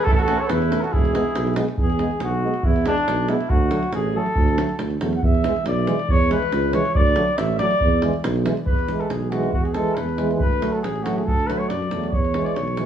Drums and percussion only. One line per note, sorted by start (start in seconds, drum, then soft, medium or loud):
0.07 davul low medium
0.19 davul high soft
0.28 davul high medium
0.49 davul high medium
0.62 davul high soft
0.72 davul high medium
0.84 davul high soft
0.94 davul low medium
1.05 davul high soft
1.15 davul high medium
1.36 davul high medium
1.47 davul high soft
1.56 davul high medium
1.68 davul high soft
1.78 davul low medium
1.90 davul high soft
1.99 davul high soft
2.11 davul high soft
2.20 davul high medium
2.54 davul high soft
2.63 davul low medium
2.76 davul high soft
2.86 davul high medium
2.98 davul high soft
3.08 davul high medium
3.29 davul high medium
3.41 davul high soft
3.50 davul low medium
3.71 davul high medium
3.83 davul high soft
3.92 davul high medium
4.26 davul high soft
4.36 davul low medium
4.48 davul high soft
4.58 davul high medium
4.69 davul high soft
4.79 davul high medium
4.91 davul high soft
5.01 davul high medium
5.13 davul high soft
5.23 davul low medium
5.35 davul high soft
5.44 davul high medium
5.56 davul high soft
5.66 davul high medium
5.87 davul high medium
5.99 davul high soft
6.09 davul low medium
6.21 davul high soft
6.31 davul high medium
6.42 davul high soft
6.52 davul high medium
6.73 davul high medium
6.85 davul high soft
6.95 davul low medium
7.07 davul high soft
7.16 davul high medium
7.28 davul high soft
7.38 davul high medium
7.59 davul high medium
7.71 davul high soft
7.80 davul low medium
8.02 davul high medium
8.14 davul high soft
8.24 davul high medium
8.36 davul high soft
8.46 davul high medium
8.57 davul high soft
8.66 davul low medium
8.79 davul high soft
8.88 davul high soft
9.01 davul high soft
9.10 davul high medium
9.22 davul high soft
9.32 davul high medium
9.43 davul high soft
9.53 davul low medium
9.65 davul high soft
9.74 davul high medium
9.87 davul high soft
9.97 davul high medium
10.09 davul high soft
10.18 davul high medium
10.31 davul high soft
10.40 davul low medium
10.53 davul high soft
10.62 davul high medium
10.75 davul high soft
10.84 davul high medium
10.96 davul high soft
11.06 davul high medium
11.18 davul high soft
11.28 davul low medium
11.40 davul high soft
11.50 davul high medium
11.70 davul high medium
11.82 davul high soft
11.91 davul high soft
12.04 davul high soft
12.13 davul low medium
12.25 davul high soft
12.34 davul high medium
12.46 davul high soft
12.56 davul high soft
12.67 davul high soft
12.77 davul high medium